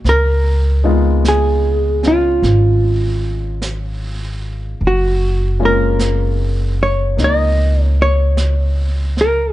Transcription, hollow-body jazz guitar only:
0.09 1.22 A#4 medium
1.28 2.07 G#4 medium
2.08 3.60 F4 medium
4.87 5.65 F#4 medium
5.65 6.82 A#4 medium
6.83 7.22 C#5 medium
7.24 7.84 D#5 medium
7.84 8.02 C#5 medium
8.02 9.22 C#5 medium
9.21 9.53 A#4 medium

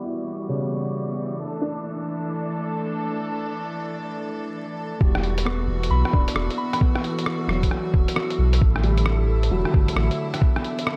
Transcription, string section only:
0.00 4.97 E3 medium
0.00 1.36 G3 medium
0.00 1.36 B3 medium
0.00 1.36 F#4 medium
1.40 4.97 A3 medium
1.40 4.97 D4 medium
1.40 4.97 A4 medium
5.02 10.96 E3 medium
5.02 8.59 B3 medium
5.02 8.58 F#4 medium
8.61 10.96 D3 medium
8.61 10.40 A3 medium
8.61 10.96 E4 medium
10.41 10.96 B3 medium

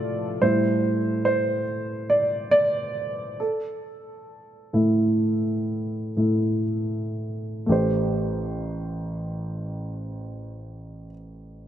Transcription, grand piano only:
0.00 0.42 A2 soft
0.00 0.43 A3 soft
0.00 0.44 C4 soft
0.00 0.44 D5 medium
0.42 1.64 A2 soft
0.42 1.64 G3 soft
0.42 1.64 E4 soft
0.42 1.24 C5 medium
1.25 2.12 C5 medium
2.10 2.50 D5 medium
2.51 3.41 D5 medium
3.40 6.62 A4 medium
4.73 6.12 A2 soft
4.73 6.12 A3 soft
4.73 6.12 E4 soft
6.17 6.62 A2 soft
6.17 6.63 A3 soft
6.17 6.63 E4 soft
7.66 11.09 A1 medium
7.66 11.06 A3 medium
7.66 11.09 G4 soft
7.72 11.12 C5 medium

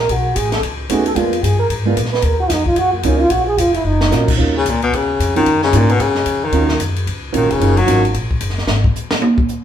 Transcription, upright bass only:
0.09 0.35 B1 medium
0.36 0.62 A1 medium
0.63 0.89 C#2 medium
0.89 1.15 D#2 medium
1.16 1.42 F2 medium
1.43 1.69 G2 medium
1.69 1.96 G#2 medium
1.97 2.22 A#2 loud
2.22 2.49 D#2 medium
2.49 2.75 F2 loud
2.76 3.03 F#2 medium
3.04 3.30 C#2 loud
3.30 3.57 A#1 medium
3.58 3.84 F1 medium
3.84 4.10 F#1 medium
4.11 4.37 A#1 loud
4.39 4.65 D#2 medium
4.65 4.91 C#2 medium
4.93 5.19 D#2 medium
5.19 5.45 F2 medium
5.46 5.72 F#2 medium
5.73 5.99 G#2 medium
5.99 6.25 F#2 medium
6.26 6.51 F2 medium
6.52 6.79 D#2 medium
6.79 7.06 F#2 medium
7.07 7.33 C#2 medium
7.34 7.44 A#1 loud
7.42 7.50 F#1 medium
7.51 7.60 D#1 medium
7.60 7.87 F#1 medium
7.87 8.14 G#1 loud
8.14 8.40 A#1 medium
8.40 8.66 F#1 medium
8.67 8.83 G#1 medium

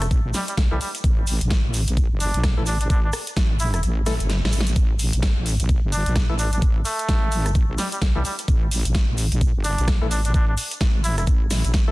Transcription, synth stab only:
0.71 0.76 E3 medium
0.71 0.76 A3 medium
0.71 0.76 E4 medium
0.71 0.76 A4 medium
2.57 2.63 E3 medium
2.57 2.63 A3 medium
2.57 2.63 E4 medium
2.57 2.63 A4 medium
4.06 4.14 E3 medium
4.06 4.14 A3 medium
4.06 4.14 E4 medium
4.06 4.14 A4 loud
6.29 6.35 E3 medium
6.29 6.35 A3 medium
6.29 6.35 E4 medium
6.29 6.35 A4 medium
8.16 8.21 E3 medium
8.16 8.21 A3 medium
8.16 8.21 E4 medium
8.16 8.21 A4 medium
10.02 10.07 E3 medium
10.02 10.07 A3 medium
10.02 10.07 E4 medium
10.02 10.07 A4 medium
11.88 11.91 E3 medium
11.88 11.91 A3 medium
11.88 11.91 E4 medium
11.88 11.91 A4 medium

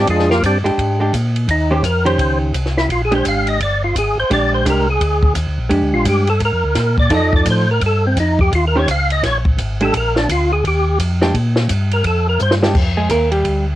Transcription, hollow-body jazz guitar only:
0.64 0.97 G#3 medium
0.64 0.98 D4 medium
0.64 0.98 G4 medium
1.00 1.11 G#3 medium
1.00 1.12 D4 medium
1.00 1.12 G4 medium
1.71 1.82 D#3 medium
1.71 1.82 C#4 medium
1.71 1.83 G4 medium
1.71 1.83 C5 medium
2.05 2.51 D#3 medium
2.05 2.51 C#4 medium
2.05 2.51 G4 medium
2.05 2.52 C5 medium
3.11 3.57 G#3 medium
3.11 3.57 D4 medium
3.11 3.57 G4 medium
4.30 4.64 G#3 medium
4.30 4.64 D4 medium
4.30 4.65 G4 medium
4.65 4.85 G#3 medium
4.65 4.85 D4 medium
4.65 4.86 G4 medium
5.69 6.23 G#3 medium
5.69 6.23 D4 medium
5.69 6.24 G4 medium
7.10 7.64 F3 medium
7.10 7.64 D#4 medium
7.10 7.65 A4 medium
7.10 7.65 D5 medium
8.75 8.87 D#3 medium
8.75 8.87 C#4 medium
8.75 8.87 G4 medium
8.75 8.88 C5 medium
9.81 9.92 G#3 medium
9.81 9.93 D4 medium
9.81 9.93 G4 medium
11.21 11.33 G#3 medium
11.21 11.33 D4 medium
11.21 11.34 G4 medium
12.63 12.74 G#3 medium
12.63 12.74 D4 medium
12.63 12.75 G4 medium
12.97 13.10 G#3 medium
12.97 13.10 G#4 medium
13.11 13.31 A#3 medium
13.11 13.32 A#4 medium
13.32 13.65 G3 medium
13.32 13.65 G4 medium

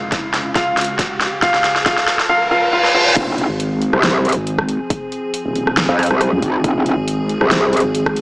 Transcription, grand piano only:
0.00 0.47 F4 medium
0.00 0.47 F5 medium
0.56 1.34 F4 medium
0.56 1.34 F5 medium
1.42 1.84 F4 medium
1.42 1.84 F5 loud
1.86 2.28 F4 medium
1.86 2.28 F5 loud
2.29 2.50 F4 medium
2.29 2.50 F5 loud
2.51 2.71 F4 medium
2.51 2.71 F5 loud
2.73 2.93 F4 medium
2.73 2.93 F5 loud
2.95 3.15 F4 medium
2.95 3.15 F5 loud

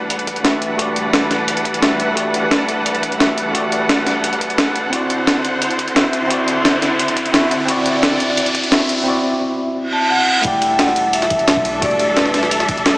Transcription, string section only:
0.00 4.89 E3 medium
0.00 4.89 G3 medium
0.00 4.89 D4 medium
0.00 9.03 A4 medium
0.00 4.89 B4 medium
0.00 9.03 F#5 medium
4.92 9.02 D3 medium
4.92 9.02 E4 medium
4.92 7.66 C5 medium
7.68 9.05 D5 medium
10.44 12.98 G3 medium
10.44 12.98 D4 medium
10.44 12.98 A4 medium
10.44 12.98 E5 medium

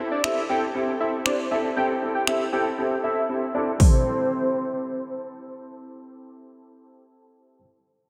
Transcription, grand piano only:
0.00 0.13 C4 medium
0.00 0.13 E4 medium
0.00 0.13 G4 medium
0.00 0.14 C5 medium
0.24 0.39 C4 medium
0.24 0.39 E4 medium
0.24 0.39 G4 medium
0.24 0.39 A4 medium
0.49 0.64 C4 medium
0.49 0.64 E4 medium
0.49 0.64 G4 medium
0.49 0.64 A4 loud
0.75 0.90 C4 medium
0.75 0.90 E4 medium
0.75 0.90 G4 medium
0.75 0.90 A4 medium
1.00 1.15 C4 medium
1.00 1.15 E4 medium
1.00 1.15 G4 medium
1.00 1.15 A4 medium
1.25 1.40 C4 medium
1.25 1.40 E4 medium
1.25 1.41 G4 medium
1.25 1.41 C5 medium
1.51 1.66 C4 medium
1.51 1.66 E4 medium
1.51 1.66 G4 medium
1.51 1.66 A4 loud
1.76 1.91 C4 medium
1.76 1.91 E4 medium
1.76 1.91 G4 medium
1.76 1.92 A4 loud
2.02 2.17 C4 medium
2.02 2.17 E4 medium
2.02 2.17 G4 medium
2.02 2.17 A4 medium
2.27 2.42 C4 medium
2.27 2.42 E4 medium
2.27 2.42 G4 medium
2.27 2.42 A4 medium
2.53 2.68 C4 medium
2.53 2.68 E4 medium
2.53 2.68 G4 medium
2.53 2.68 A4 loud
2.78 2.93 C4 medium
2.78 2.93 E4 medium
2.78 2.93 G4 medium
2.78 2.93 A4 medium
3.03 3.18 C4 medium
3.03 3.19 E4 medium
3.03 3.19 G4 medium
3.03 3.19 A4 medium
3.29 3.44 C4 medium
3.29 3.44 E4 medium
3.29 3.44 G4 medium
3.29 3.44 A4 medium
3.54 3.69 C4 medium
3.54 3.69 E4 medium
3.54 3.69 G4 medium
3.54 3.69 A4 loud
3.78 7.55 C4 medium
3.78 7.56 E4 medium
3.78 7.58 G4 medium
3.82 7.59 A4 medium

